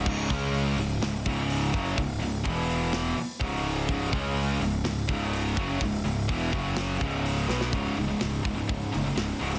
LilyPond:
<<
  \new Staff \with { instrumentName = "Distorted electric guitar" } { \clef bass \time 4/4 \key cis \minor \tempo 4 = 125 <cis, gis, cis>8 <cis gis cis'>4 <cis, gis,>8 <cis, gis,>8 <cis, gis, cis>4 <fis, cis fis>8 | <cis, gis,>8 <cis, gis,>8 <e, b, e>4. r8 <cis, gis, cis>4 | <cis, gis, cis>8 <cis gis cis'>4 <cis, gis,>8 <cis, gis,>8 <cis, gis, cis>4 <fis, cis fis>8 | <cis, gis,>8 <cis, gis,>8 <e, b, e>8 <fis, cis fis>4 <cis, gis, cis>4 <b, fis b>8 |
<cis, gis, cis>8 <cis, gis,>16 <cis, gis,>16 <cis, gis,>8 <cis, gis,>16 <cis, gis,>16 <cis, gis,>8 <cis, gis,>16 <cis, gis,>16 <cis, gis,>8 <cis, gis, cis>16 <cis, gis,>16 | }
  \new Staff \with { instrumentName = "Distorted electric guitar" } { \clef bass \time 4/4 \key cis \minor <cis, gis, cis>8 <cis gis cis'>4 <cis, gis,>8 <cis, gis,>8 <cis, gis, cis>4 <fis, cis fis>8 | <cis, gis,>8 <cis, gis,>8 <e, b, e>4. r8 <cis, gis, cis>4 | <cis, gis, cis>8 <cis gis cis'>4 <cis, gis,>8 <cis, gis,>8 <cis, gis, cis>4 <fis, cis fis>8 | <cis, gis,>8 <cis, gis,>8 <e, b, e>8 <fis, cis fis>4 <cis, gis, cis>4 <b, fis b>8 |
<cis, gis, cis>8 <cis, gis,>16 <cis, gis,>16 <cis, gis,>8 <cis, gis,>16 <cis, gis,>16 <cis, gis,>8 <cis, gis,>16 <cis, gis,>16 <cis, gis,>8 <cis, gis, cis>16 <cis, gis,>16 | }
  \new Staff \with { instrumentName = "Distorted electric guitar" } { \clef bass \time 4/4 \key cis \minor <cis, gis, cis>8 <cis gis cis'>4 <cis, gis,>8 <cis, gis,>8 <cis, gis, cis>4 <fis, cis fis>8 | <cis, gis,>8 <cis, gis,>8 <e, b, e>4. r8 <cis, gis, cis>4 | <cis, gis, cis>8 <cis gis cis'>4 <cis, gis,>8 <cis, gis,>8 <cis, gis, cis>4 <fis, cis fis>8 | <cis, gis,>8 <cis, gis,>8 <e, b, e>8 <fis, cis fis>4 <cis, gis, cis>4 <b, fis b>8 |
<cis, gis, cis>8 <cis, gis, cis>8 <cis, gis, cis>8 <cis, gis, cis>8 <cis, gis, cis>8 <cis, gis, cis>8 <cis, gis, cis>8 <cis, gis, cis>8 | }
  \new Staff \with { instrumentName = "Picked electric bass" } { \clef bass \time 4/4 \key cis \minor cis,,8 cis,4 cis,,8 cis,,8 cis,,4 fis,,8 | cis,,8 cis,,8 e,,4. r8 cis,,4 | cis,,8 cis,4 cis,,8 cis,,8 cis,,4 fis,,8 | cis,,8 cis,,8 e,,8 fis,,4 cis,,4 b,,8 |
cis,,8 cis,,8 cis,,8 cis,,8 cis,,8 fis,,8 cis,,8 cis,,8 | }
  \new DrumStaff \with { instrumentName = "Drums" } \drummode { \time 4/4 <cymc bd>8 <hho bd>8 hho8 hho8 <hho sn>8 <hho bd>8 hho8 <hho bd>8 | <hho bd>8 hho8 bd8 hho8 <hho sn>8 hho8 bd8 hho8 | <hho bd>8 bd8 hho8 hho8 <hho sn>8 <hho bd>8 hho8 <hho bd>8 | <hho bd>8 hho8 <hho bd>8 <hho bd>8 <hho sn>8 <hho bd>8 hho8 sn16 sn16 |
<hho bd>8 hho8 <hho sn>8 <hho bd>8 <hho bd>8 hho8 <hho sn>8 hho16 sn16 | }
>>